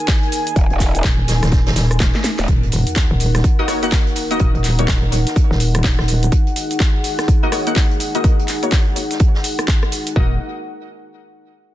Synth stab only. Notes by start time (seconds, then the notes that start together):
3.59 A#3 D#4 F#4 D#5
3.68 A#3 D#4 F#4 C#5
3.83 A#3 D#4 F#4 F#5
4.31 A#3 D#4 F#4 D#5
4.40 F#4
4.79 A#3 D#4 F#4 C#5
7.43 A#3 D#4 F#4 D#5
7.52 A#3 D#4 F#4 C#5
7.67 A#3 D#4 F#4 F#5
8.15 A#3 D#4 F#4 D#5
8.24 A#3 D#4 F#4 D#5
8.63 A#3 D#4 F#4 C#5
10.16 A#3 D#4 F#4 D#5